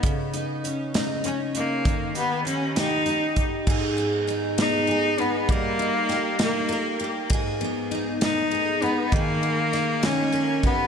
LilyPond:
<<
  \new Staff \with { instrumentName = "Steel-string acoustic guitar" } { \time 6/8 \key gis \minor \tempo 4. = 66 cis8 dis'8 cis'8 dis'8 cis'8 dis'8 | dis8 g'8 dis'8 g'8 dis'8 g'8 | <gis, gis'>8 b8 dis'8 b8 gis'8 dis'8 | <g ais'>8 dis'8 g'8 dis'8 ais'8 g'8 |
<gis, gis'>8 b8 dis'8 b8 gis'8 dis'8 | <dis gis'>4 dis'8 dis8 ais'8 g'8 | }
  \new Staff \with { instrumentName = "Cello" } { \time 6/8 \key gis \minor r2 cis'8 ais8~ | ais8 b8 cis'8 dis'4 r8 | r4. dis'4 b8 | ais4. ais4 r8 |
r4. dis'4 b8 | ais4. cis'4 b8 | }
  \new DrumStaff \with { instrumentName = "Drums" } \drummode { \time 6/8 <hh bd>8 hh8 hh8 <hh sn>8 hh8 hh8 | <hh bd>8 hh8 hh8 <hh sn>8 hh8 <hh bd>8 | <cymc bd>8 cymr8 cymr8 <cymr sn>8 cymr8 cymr8 | <bd cymr>8 cymr8 <cymr sn>8 <cymr sn>8 cymr8 cymr8 |
<bd cymr>8 cymr8 cymr8 <cymr sn>8 cymr8 cymr8 | <bd cymr>8 cymr8 <cymr sn>8 <cymr sn>8 cymr8 <bd cymr>8 | }
>>